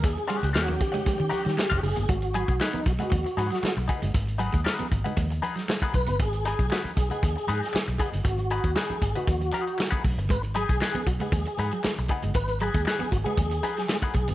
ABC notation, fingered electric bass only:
X:1
M:4/4
L:1/16
Q:1/4=117
K:D#m
V:1 name="Fingered electric bass" clef=bass
D,, z2 C,, D,,2 z3 D, z D, z E,,, F,,, =G,,, | G,,,3 B,,, z2 B,,, z D,, z G,, z2 B,,, z =G,,, | G,,,3 D,, z2 G,,, z D,,2 z4 B,,, =G,,, | G,,,3 B,,, z2 B,,, z D,, z G,, z2 B,,, z =G,,, |
G,,,3 D,, z2 G,,, z D,,2 z4 B,,, =G,,, | G,,,3 B,,, z2 B,,, z D,, z G,, z2 B,,, z =G,,, | G,,,3 D,, z2 G,,, z D,,2 z4 B,,, =G,,, |]